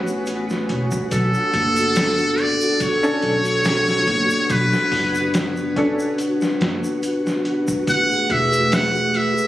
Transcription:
0.00 0.66 A1 medium
0.00 1.07 A3 medium
0.00 1.09 B3 medium
0.00 1.10 C#4 medium
0.00 1.10 F#4 medium
0.00 9.47 F#4 medium
0.00 0.24 B4 loud
0.00 1.07 B4 medium
0.00 1.07 C#5 medium
0.00 1.07 G#5 medium
0.07 shaker medium
0.26 closed hi-hat medium
0.26 shaker medium
0.49 snare soft
0.49 shaker soft
0.69 0.90 E1 medium
0.69 closed hi-hat medium
0.91 kick loud
0.91 shaker medium
1.11 1.32 B1 loud
1.11 7.84 B3 medium
1.11 7.84 D4 medium
1.11 4.46 A4 medium
1.11 2.42 A4 loud
1.11 kick loud
1.11 closed hi-hat medium
1.11 shaker medium
1.34 shaker soft
1.54 2.57 F#1 medium
1.54 kick medium
1.54 closed hi-hat medium
1.76 closed hi-hat soft
1.76 shaker medium
1.95 snare loud
1.95 closed hi-hat medium
1.95 shaker medium
2.18 shaker soft
2.38 2.82 D5 loud
2.38 closed hi-hat medium
2.61 shaker medium
2.80 4.53 C#5 loud
2.80 kick loud
2.80 closed hi-hat medium
2.80 shaker medium
3.03 3.31 C#4 loud
3.03 3.32 D4 medium
3.03 3.32 A4 loud
3.03 shaker soft
3.22 4.04 B1 medium
3.22 closed hi-hat medium
3.45 closed hi-hat soft
3.45 shaker medium
3.64 snare loud
3.64 closed hi-hat medium
3.64 shaker medium
3.87 snare medium
3.87 shaker soft
4.07 4.27 F#1 medium
4.07 kick loud
4.07 closed hi-hat medium
4.30 shaker medium
4.49 4.70 B1 loud
4.49 9.47 B4 medium
4.49 5.35 B4 loud
4.49 kick loud
4.49 closed hi-hat medium
4.49 shaker medium
4.73 snare medium
4.73 shaker soft
4.92 5.95 F#1 medium
4.92 kick medium
4.92 open hi-hat medium
5.15 closed hi-hat soft
5.15 shaker medium
5.34 snare loud
5.34 closed hi-hat medium
5.34 shaker medium
5.56 shaker soft
5.76 6.06 C#4 medium
5.76 6.07 D4 medium
5.76 6.07 A4 medium
5.76 kick medium
5.76 closed hi-hat medium
5.99 shaker medium
6.18 closed hi-hat medium
6.18 shaker medium
6.41 snare medium
6.41 shaker soft
6.61 6.81 F#1 medium
6.61 snare loud
6.61 closed hi-hat medium
6.84 shaker medium
7.03 closed hi-hat medium
7.03 shaker medium
7.27 snare soft
7.27 shaker soft
7.45 closed hi-hat medium
7.68 kick medium
7.68 shaker medium
7.87 8.08 A1 medium
7.87 9.47 A3 medium
7.87 9.47 G#4 medium
7.87 9.47 E5 medium
7.87 8.33 F#5 loud
7.87 kick loud
7.87 closed hi-hat medium
7.87 shaker medium
8.11 shaker soft
8.30 9.33 E1 medium
8.30 8.76 E5 loud
8.30 kick medium
8.30 closed hi-hat medium
8.53 closed hi-hat soft
8.53 shaker medium
8.72 9.18 F#5 loud
8.72 snare loud
8.72 closed hi-hat medium
8.72 shaker medium
8.95 shaker soft
9.14 9.47 E5 loud
9.14 closed hi-hat medium
9.38 shaker medium

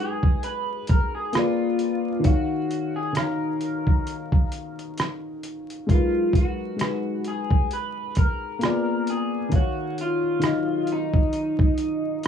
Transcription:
0.00 1.35 F#3 medium
0.00 1.36 G#3 medium
0.00 1.36 D#4 medium
0.00 0.79 F#4 medium
0.00 0.44 G#4 loud
0.00 0.80 G#4 medium
0.00 1.36 A#4 medium
0.00 1.36 B4 medium
0.23 kick medium
0.43 0.86 B4 loud
0.43 closed hi-hat medium
0.87 1.14 A#4 loud
0.87 kick medium
0.87 closed hi-hat medium
1.15 1.35 G#4 medium
1.32 2.08 A#3 medium
1.32 2.09 F4 medium
1.32 2.21 F4 medium
1.32 2.10 G#4 medium
1.32 cross-stick loud
1.32 closed hi-hat medium
1.37 2.10 B4 medium
1.37 2.11 D5 medium
1.79 closed hi-hat medium
2.19 2.87 D#3 medium
2.19 2.88 D#4 medium
2.19 2.89 F#4 medium
2.24 2.98 F#4 medium
2.24 2.90 C#5 medium
2.24 2.90 F5 medium
2.24 kick loud
2.24 closed hi-hat medium
2.71 closed hi-hat medium
2.96 3.16 G#4 medium
3.13 4.41 D#3 medium
3.13 4.42 D#4 medium
3.13 4.43 F#4 medium
3.13 5.39 A#4 medium
3.13 closed hi-hat medium
3.17 4.44 C#5 medium
3.17 4.44 F5 medium
3.17 cross-stick loud
3.61 closed hi-hat medium
3.87 kick medium
4.07 closed hi-hat medium
4.32 kick medium
4.52 closed hi-hat medium
4.79 closed hi-hat soft
4.97 cross-stick loud
4.97 closed hi-hat medium
5.43 closed hi-hat medium
5.70 closed hi-hat soft
5.87 6.54 F#3 medium
5.87 6.53 G#3 medium
5.87 6.53 D#4 medium
5.87 kick loud
5.87 closed hi-hat medium
5.91 6.32 F4 medium
5.91 6.55 A#4 medium
5.91 6.56 B4 medium
6.33 7.29 F#4 medium
6.33 kick loud
6.33 closed hi-hat medium
6.76 8.05 G#3 medium
6.76 8.06 D#4 medium
6.76 8.07 F#4 medium
6.76 closed hi-hat medium
6.81 8.07 G#4 medium
6.81 8.08 B4 medium
6.81 cross-stick loud
7.24 7.69 G#4 medium
7.24 closed hi-hat medium
7.51 kick medium
7.71 8.18 B4 medium
7.71 closed hi-hat medium
8.15 9.10 A#4 loud
8.15 kick medium
8.15 closed hi-hat medium
8.59 9.35 A#3 medium
8.59 9.36 F4 medium
8.59 9.36 G#4 medium
8.59 closed hi-hat medium
8.63 9.37 B3 medium
8.63 9.38 D5 medium
8.63 cross-stick loud
9.07 9.55 G#4 medium
9.07 closed hi-hat medium
9.49 10.16 D#3 medium
9.49 10.16 D#4 medium
9.49 10.17 F5 medium
9.49 kick loud
9.49 closed hi-hat medium
9.54 10.18 F#4 medium
9.54 9.96 F#4 medium
9.54 10.19 C#5 medium
9.98 10.93 F4 medium
9.98 closed hi-hat medium
10.39 11.68 D#3 medium
10.39 11.69 D#4 medium
10.39 11.70 F4 medium
10.39 closed hi-hat loud
10.44 11.71 F#3 medium
10.44 11.72 D#5 medium
10.44 cross-stick loud
10.87 closed hi-hat medium
10.92 12.28 D#4 medium
11.14 kick medium
11.33 closed hi-hat medium
11.59 kick medium
11.78 closed hi-hat medium
12.23 closed hi-hat medium

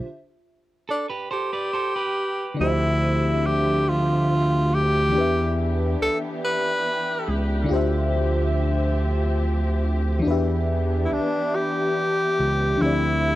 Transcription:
0.89 1.06 D4 medium
0.89 1.09 A4 medium
1.10 1.30 G4 medium
1.10 1.30 B4 medium
1.31 2.55 G4 medium
1.31 1.51 A4 medium
1.31 1.51 C5 medium
1.53 1.73 B4 medium
1.53 1.73 D5 medium
1.73 1.94 A4 medium
1.73 1.94 C5 medium
1.96 2.56 G4 medium
1.96 2.56 B4 medium
2.54 5.08 D3 medium
2.54 5.09 D4 medium
2.59 5.17 D2 loud
2.59 5.10 F3 medium
2.59 5.12 F3 medium
2.59 5.12 C4 medium
2.59 3.48 E4 loud
2.59 13.35 G4 medium
2.59 5.11 G4 medium
2.59 5.12 E5 medium
2.63 5.12 C5 medium
2.63 2.69 D#5 medium
2.72 5.17 E5 medium
3.46 3.90 G4 medium
3.89 4.76 F4 medium
4.75 5.74 G4 loud
5.09 7.63 E3 medium
5.09 7.64 D4 medium
5.14 5.96 E2 loud
5.14 7.67 E3 medium
5.14 7.67 B3 medium
5.14 7.67 D4 medium
5.14 7.66 G4 medium
5.14 7.67 B4 medium
5.21 7.69 E5 medium
6.01 6.09 C#2 medium
6.01 6.18 A4 loud
6.45 7.35 B4 loud
7.28 7.66 C#2 medium
7.64 10.18 D3 medium
7.64 10.19 D4 medium
7.69 10.21 D2 loud
7.69 10.22 F3 medium
7.69 10.22 C4 medium
7.69 10.20 F4 medium
7.69 10.21 G4 medium
7.69 10.22 E5 medium
7.73 10.23 C5 medium
7.73 10.24 E5 medium
10.19 12.73 E3 medium
10.19 12.75 D4 medium
10.25 11.07 E2 loud
10.25 12.77 E3 medium
10.25 12.77 B3 medium
10.25 12.77 D4 medium
10.25 10.31 F#4 medium
10.25 12.78 B4 medium
10.31 12.79 G4 medium
10.31 12.79 E5 medium
11.05 11.14 E4 medium
11.11 11.19 C#2 medium
11.11 11.57 D4 medium
11.55 12.84 G4 loud
12.39 12.77 C#2 medium
12.75 13.35 D3 medium
12.75 13.35 D4 medium
12.79 13.35 D2 loud
12.79 13.35 F3 medium
12.79 13.35 C4 medium
12.79 13.35 E4 medium
12.79 13.35 E4 loud
12.79 13.35 G4 medium
12.84 13.35 C4 medium
12.84 12.90 D5 medium
12.93 13.35 E5 medium

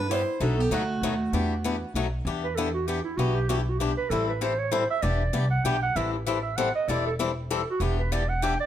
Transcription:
0.00 0.22 G2 medium
0.00 0.11 D4 medium
0.00 0.11 B4 medium
0.09 0.21 C3 medium
0.09 0.21 G3 medium
0.09 0.21 B3 medium
0.09 0.40 E4 medium
0.09 0.21 E4 medium
0.09 0.21 G4 medium
0.09 0.42 C5 medium
0.40 0.65 B1 loud
0.40 0.60 B2 medium
0.40 0.60 F#3 medium
0.40 0.60 A3 medium
0.40 0.59 D4 medium
0.40 0.60 D#4 medium
0.40 0.60 F#4 medium
0.40 0.60 A4 medium
0.57 0.70 B3 medium
0.57 0.73 G4 medium
0.70 0.97 D2 medium
0.70 0.82 B2 medium
0.70 0.82 F#3 medium
0.70 1.91 A3 medium
0.70 0.82 A3 medium
0.70 0.82 D#4 medium
0.70 0.82 F#4 medium
0.70 1.92 F#4 medium
1.01 1.28 D#2 medium
1.01 1.13 B2 medium
1.01 1.13 F#3 loud
1.01 1.13 A3 medium
1.01 1.14 D#4 medium
1.01 1.13 F#4 loud
1.33 1.82 E2 medium
1.33 1.52 E3 medium
1.33 1.52 B3 medium
1.33 1.52 D4 medium
1.33 1.53 G4 medium
1.64 1.75 E3 medium
1.64 1.75 B3 medium
1.64 1.75 D4 loud
1.64 1.75 G4 medium
1.94 2.19 B1 medium
1.94 2.06 B2 medium
1.94 2.06 F#3 medium
1.94 2.06 A3 medium
1.94 2.06 D#4 medium
1.94 2.06 F#4 medium
2.25 2.99 E2 medium
2.25 2.45 E3 medium
2.25 2.45 B3 medium
2.25 2.46 D4 medium
2.25 2.46 G4 medium
2.44 2.57 B4 medium
2.55 2.67 E3 medium
2.55 2.68 B3 medium
2.55 2.68 D4 loud
2.55 2.68 G4 medium
2.55 2.73 A4 medium
2.74 2.89 F#4 medium
2.87 2.98 E3 medium
2.87 2.98 B3 medium
2.87 2.98 D4 medium
2.87 3.04 G4 medium
2.87 2.99 G4 medium
3.04 3.18 E4 medium
3.17 3.92 B1 medium
3.17 3.38 E3 medium
3.17 3.38 B3 medium
3.17 3.38 D4 medium
3.17 3.36 F#4 medium
3.17 3.38 G4 medium
3.35 3.50 G4 medium
3.49 3.60 E3 medium
3.49 3.60 B3 medium
3.49 3.60 D4 medium
3.49 3.60 F#4 medium
3.49 3.60 G4 medium
3.58 3.71 E4 medium
3.69 3.80 F#4 medium
3.79 3.90 E3 medium
3.79 3.91 B3 medium
3.79 3.91 D4 medium
3.79 3.97 G4 medium
3.79 3.91 G4 medium
3.97 4.11 B4 loud
4.10 4.84 A1 loud
4.10 4.30 E3 medium
4.10 4.30 G3 medium
4.10 4.31 C4 medium
4.10 4.31 E4 medium
4.10 4.28 A4 medium
4.10 4.31 A4 medium
4.28 4.43 B4 medium
4.41 4.52 E3 medium
4.41 4.52 G3 medium
4.41 4.52 C4 medium
4.41 4.52 E4 medium
4.41 4.52 A4 medium
4.41 4.60 C5 medium
4.58 4.73 C#5 medium
4.71 4.82 E3 medium
4.71 4.82 G3 medium
4.71 4.83 C4 medium
4.71 4.83 E4 loud
4.71 4.83 A4 medium
4.71 4.90 C5 medium
4.90 5.04 E5 loud
5.02 5.28 E1 loud
5.02 5.22 E3 medium
5.02 5.22 B3 medium
5.02 5.22 D4 medium
5.02 5.22 G4 medium
5.02 5.50 D5 medium
5.33 5.60 C2 medium
5.33 5.44 E3 medium
5.33 5.44 B3 medium
5.33 5.44 D4 medium
5.33 5.44 G4 loud
5.51 5.66 F#5 medium
5.64 5.91 B1 medium
5.64 5.75 E3 medium
5.64 5.76 B3 medium
5.64 5.76 D4 medium
5.64 5.76 G4 medium
5.64 5.82 G5 medium
5.83 5.97 F#5 loud
5.96 6.70 A1 loud
5.96 6.15 E3 medium
5.96 6.15 G3 medium
5.96 6.15 C4 medium
5.96 6.15 E4 medium
5.96 6.16 A4 medium
5.96 6.12 E5 medium
6.13 6.27 G4 soft
6.25 6.37 E3 medium
6.25 6.37 G3 medium
6.25 6.37 C4 medium
6.25 6.37 E4 medium
6.25 6.38 A4 loud
6.25 6.42 B4 medium
6.43 6.58 E5 medium
6.57 6.68 E3 medium
6.57 6.68 G3 medium
6.57 6.68 C4 medium
6.57 6.68 E4 medium
6.57 6.68 A4 medium
6.57 6.75 F#5 medium
6.75 6.90 D#5 loud
6.88 7.62 E1 medium
6.88 7.07 E3 medium
6.88 7.08 G3 medium
6.88 7.08 C4 medium
6.88 7.08 E4 medium
6.88 7.08 A4 medium
6.88 7.06 D5 medium
7.07 7.14 A4 medium
7.19 7.30 E3 medium
7.19 7.30 G3 medium
7.19 7.30 C4 medium
7.19 7.30 E4 medium
7.19 7.30 A4 medium
7.50 7.61 E3 medium
7.50 7.61 G3 medium
7.50 7.61 C4 medium
7.50 7.61 E4 medium
7.50 7.67 A4 medium
7.50 7.61 A4 loud
7.70 7.84 F#4 medium
7.80 8.54 E1 medium
7.80 8.00 E3 medium
7.80 8.00 B3 medium
7.80 8.00 D4 medium
7.80 8.00 G4 medium
7.80 7.99 G4 medium
7.99 8.14 B4 medium
8.12 8.22 E3 medium
8.12 8.22 B3 medium
8.12 8.22 D4 medium
8.12 8.23 G4 loud
8.12 8.30 D5 medium
8.29 8.44 F#5 medium
8.42 8.53 E3 medium
8.42 8.53 B3 medium
8.42 8.53 D4 medium
8.42 8.53 G4 medium
8.42 8.59 G5 medium
8.60 8.66 D5 medium

